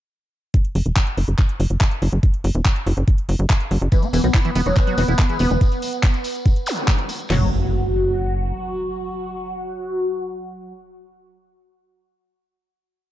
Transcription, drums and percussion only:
0.54 kick, closed hi-hat
0.65 closed hi-hat
0.75 open hi-hat
0.86 closed hi-hat
0.96 kick, clap, closed hi-hat
1.07 closed hi-hat
1.17 open hi-hat
1.28 closed hi-hat
1.39 kick, clap, closed hi-hat
1.49 closed hi-hat
1.60 open hi-hat
1.70 closed hi-hat
1.81 kick, clap, closed hi-hat
1.91 closed hi-hat
2.02 open hi-hat
2.13 closed hi-hat
2.23 kick, closed hi-hat
2.34 closed hi-hat
2.44 open hi-hat
2.55 closed hi-hat
2.65 kick, clap, closed hi-hat
2.76 closed hi-hat
2.87 open hi-hat
2.97 closed hi-hat
3.08 kick, closed hi-hat
3.18 closed hi-hat
3.29 open hi-hat
3.39 closed hi-hat
3.50 kick, clap, closed hi-hat
3.60 closed hi-hat
3.71 open hi-hat
3.82 closed hi-hat
3.92 kick, closed hi-hat, tambourine
4.02 closed hi-hat, tambourine
4.13 open hi-hat, tambourine
4.24 tambourine
4.34 kick, clap, closed hi-hat, tambourine
4.45 closed hi-hat, tambourine
4.55 open hi-hat, tambourine
4.66 tambourine
4.76 kick, clap, closed hi-hat, tambourine
4.87 closed hi-hat, tambourine
4.98 open hi-hat, tambourine
5.08 closed hi-hat, tambourine
5.19 kick, clap, closed hi-hat, tambourine
5.29 closed hi-hat, tambourine
5.39 open hi-hat, tambourine
5.51 closed hi-hat, tambourine
5.61 kick, closed hi-hat, tambourine
5.72 closed hi-hat, tambourine
5.82 open hi-hat, tambourine
5.93 closed hi-hat, tambourine
6.03 kick, clap, closed hi-hat, tambourine
6.14 closed hi-hat, tambourine
6.24 open hi-hat, tambourine
6.35 closed hi-hat, tambourine
6.46 kick, closed hi-hat, tambourine
6.56 closed hi-hat, tambourine
6.66 open hi-hat, tambourine
6.77 closed hi-hat, tambourine
6.88 kick, clap, closed hi-hat, tambourine
6.98 closed hi-hat, tambourine
7.09 open hi-hat, tambourine
7.19 closed hi-hat, tambourine
7.30 snare, floor tom, crash

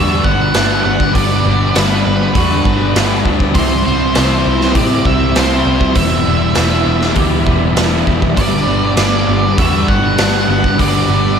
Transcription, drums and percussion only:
0.24 kick
0.54 snare, open hi-hat
1.00 kick
1.15 kick, open hi-hat
1.76 snare, open hi-hat
2.35 kick, open hi-hat
2.65 kick
2.96 snare, open hi-hat
3.25 kick
3.40 kick
3.55 kick, open hi-hat
4.15 snare, open hi-hat
4.61 snare
4.75 kick, open hi-hat
5.05 kick
5.36 snare, open hi-hat
5.81 kick
5.95 kick, open hi-hat
6.55 snare, open hi-hat
7.01 snare
7.16 kick, open hi-hat
7.47 kick
7.77 snare, open hi-hat
8.07 kick
8.22 kick
8.37 kick, open hi-hat
8.97 snare, open hi-hat
9.58 kick, open hi-hat
9.88 kick
10.18 snare, open hi-hat
10.64 kick
10.79 kick, open hi-hat

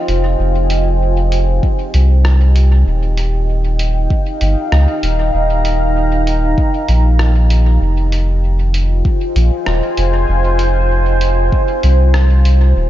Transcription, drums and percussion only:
0.08 closed hi-hat
0.70 closed hi-hat
1.32 closed hi-hat
1.63 kick
1.94 closed hi-hat
2.25 cross-stick
2.56 closed hi-hat
3.17 closed hi-hat
3.79 closed hi-hat
4.10 kick
4.41 closed hi-hat
4.72 cross-stick
5.03 closed hi-hat
5.65 closed hi-hat
6.27 closed hi-hat
6.58 kick
6.89 closed hi-hat
7.19 cross-stick
7.50 closed hi-hat
8.12 closed hi-hat
8.74 closed hi-hat
9.05 kick
9.36 closed hi-hat
9.66 cross-stick
9.97 closed hi-hat
10.59 closed hi-hat
11.21 closed hi-hat
11.52 kick
11.83 closed hi-hat
12.14 cross-stick
12.45 closed hi-hat

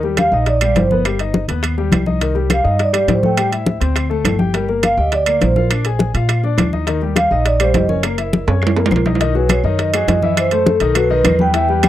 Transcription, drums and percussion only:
0.03 high bongo, high conga
0.17 high bongo, high conga, high timbale, low timbale, claves
0.32 high bongo
0.46 high bongo, high conga, high timbale
0.61 high bongo, high conga, high timbale, claves
0.76 high bongo, low bongo, high conga, high timbale, low timbale
0.91 high conga
1.05 high bongo, high conga, high timbale, claves
1.19 high bongo, high conga, high timbale
1.34 high bongo, high conga, low timbale
1.48 high bongo, high conga, high timbale
1.63 high bongo, high conga, high timbale, claves
1.78 high bongo, high conga
1.92 high bongo, low bongo, high conga, high timbale, low timbale, claves
2.06 high conga
2.21 high bongo, high timbale
2.35 high bongo, high conga
2.50 high bongo, high conga, high timbale, low timbale, claves
2.65 high bongo
2.79 high bongo, high conga, high timbale
2.94 high bongo, high conga, high timbale, claves
3.08 high bongo, low bongo, high conga, high timbale, low timbale
3.23 high conga
3.37 high bongo, high conga, high timbale, claves
3.52 high bongo, high conga, high timbale
3.66 high bongo, high conga, low timbale
3.81 high bongo, high conga, high timbale
3.96 high bongo, high conga, high timbale, claves
4.11 high bongo, high conga
4.25 high bongo, low bongo, high conga, high timbale, low timbale, claves
4.39 high conga
4.54 high bongo, high conga, high timbale
4.68 high bongo, high conga
4.83 high bongo, high conga, high timbale, low timbale, claves
4.98 high bongo
5.12 high bongo, high conga, high timbale
5.26 high bongo, high conga, high timbale, claves
5.41 high bongo, low bongo, high conga, high timbale, low timbale
5.56 high conga
5.71 high bongo, high conga, high timbale, claves
5.85 high bongo, high conga, high timbale
5.99 high bongo, high conga, low timbale
6.15 high bongo, high conga, high timbale
6.29 high bongo, high conga, high timbale, claves
6.43 high bongo, high conga
6.58 high bongo, low bongo, high conga, high timbale, low timbale, claves
6.73 high conga
6.87 high bongo, high conga, high timbale
7.01 high bongo, high conga
7.16 high bongo, high conga, high timbale, low timbale, claves
7.31 high bongo
7.45 high bongo, high conga, high timbale
7.60 high bongo, high conga, high timbale, claves
7.74 high bongo, low bongo, high conga, high timbale, low timbale
7.89 high conga
8.03 high bongo, high conga, high timbale, claves
8.18 high bongo, high conga, high timbale
8.33 high bongo, high conga, low timbale
8.48 high bongo, high conga, high timbale
8.62 high bongo, high conga, claves
8.67 low timbale
8.76 high bongo, high conga, high timbale
8.86 low timbale
8.91 high bongo, low bongo, high conga, claves
8.96 low timbale
9.06 high conga, low timbale
9.15 low timbale
9.21 high bongo, high conga, high timbale
9.35 high bongo, high conga
9.49 high bongo, high conga, high timbale, low timbale, claves
9.64 high bongo
9.79 high bongo, high conga, high timbale
9.93 high bongo, high conga, high timbale, claves
10.08 high bongo, low bongo, high conga, high timbale, low timbale
10.22 high conga
10.37 high bongo, high conga, high timbale, claves
10.51 high bongo, high conga, high timbale
10.66 high bongo, high conga, low timbale
10.80 high bongo, high conga, high timbale
10.95 high bongo, high conga, high timbale, claves
11.10 high bongo, high conga
11.25 high bongo, low bongo, high conga, high timbale, low timbale, claves
11.39 high conga
11.54 high bongo, high conga, high timbale
11.68 high bongo, high conga
11.83 high bongo, high conga, high timbale, low timbale, claves

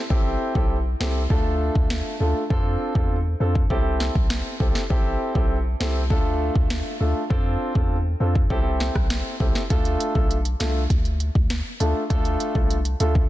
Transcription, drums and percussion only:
0.10 kick
0.55 kick
1.01 snare
1.30 kick
1.75 kick
1.90 snare
2.50 kick
2.95 kick
3.55 kick
3.70 kick
4.00 snare
4.15 kick
4.30 snare
4.60 kick
4.75 snare
4.90 kick
5.35 kick
5.81 snare
6.10 kick
6.55 kick
6.70 snare
7.30 kick
7.75 kick
8.35 kick
8.50 kick
8.80 snare
8.95 kick, cross-stick
9.10 snare
9.40 kick
9.55 snare
9.70 kick, closed hi-hat
9.85 closed hi-hat
10.00 closed hi-hat
10.15 kick
10.31 closed hi-hat
10.45 closed hi-hat
10.60 snare, closed hi-hat
10.90 kick, closed hi-hat
11.05 closed hi-hat
11.20 closed hi-hat
11.35 kick
11.50 snare, closed hi-hat
11.80 closed hi-hat
12.10 kick, closed hi-hat
12.25 closed hi-hat
12.40 closed hi-hat
12.55 kick
12.70 closed hi-hat
12.85 closed hi-hat
13.00 closed hi-hat
13.15 kick

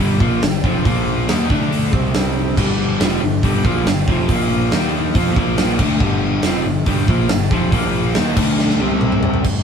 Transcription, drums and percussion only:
0.20 kick
0.42 snare, open hi-hat
0.64 kick
0.85 kick, open hi-hat
1.29 snare, open hi-hat
1.50 kick
1.72 open hi-hat
1.93 kick
2.14 snare, open hi-hat
2.57 kick, crash
3.00 snare, open hi-hat
3.43 kick, open hi-hat
3.65 kick
3.87 snare, open hi-hat
4.08 kick
4.29 kick, open hi-hat
4.72 snare, open hi-hat
5.15 kick, open hi-hat
5.36 kick
5.58 snare, open hi-hat
5.79 kick, crash
6.00 kick
6.43 snare, open hi-hat
6.86 kick, open hi-hat
7.08 kick
7.29 snare, open hi-hat
7.51 kick
7.72 kick, open hi-hat
8.15 snare, open hi-hat
8.37 kick, crash
8.59 snare
8.70 snare
8.80 high tom
8.91 high tom
9.01 mid tom
9.12 mid tom
9.23 floor tom
9.34 floor tom
9.44 kick, crash
9.56 snare

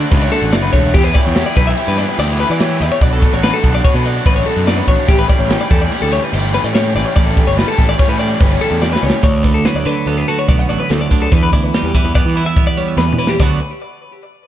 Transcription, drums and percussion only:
0.11 kick, snare, ride
0.33 snare, ride
0.52 snare, ride
0.73 kick, snare, ride
0.94 kick, crash
1.15 kick, snare, ride
1.35 snare, ride
1.57 kick, ride
1.77 ride
1.99 snare, ride
2.19 snare, ride
2.39 ride
2.60 snare, ride
2.81 ride
3.01 kick, ride
3.22 kick, snare, ride
3.43 snare, ride
3.64 kick, ride
3.85 kick, ride
4.06 ride
4.25 kick, snare, ride
4.46 ride
4.67 snare, ride
4.88 kick, ride
5.08 kick, ride
5.29 kick, snare, ride
5.50 snare, ride
5.71 kick, ride
5.92 snare, ride
6.12 ride
6.33 ride
6.54 snare, ride
6.75 snare, ride
6.96 ride
7.16 kick, ride
7.37 kick, ride
7.58 snare, ride
7.79 kick, snare, ride
7.99 kick, snare, ride
8.21 ride
8.41 kick, ride
8.61 ride
8.83 snare
8.96 snare
9.10 snare
9.23 kick, closed hi-hat
9.44 kick, snare, closed hi-hat
9.65 snare, closed hi-hat
9.86 closed hi-hat
10.07 closed hi-hat
10.28 snare, closed hi-hat
10.49 kick, snare, closed hi-hat
10.70 closed hi-hat
10.91 snare, closed hi-hat
11.11 kick, closed hi-hat
11.32 kick, closed hi-hat
11.53 kick, closed hi-hat
11.74 snare, closed hi-hat
11.95 kick, closed hi-hat
12.15 kick, closed hi-hat
12.37 closed hi-hat
12.57 kick, closed hi-hat
12.78 closed hi-hat
12.99 snare
13.13 mid tom
13.27 snare
13.40 kick, crash

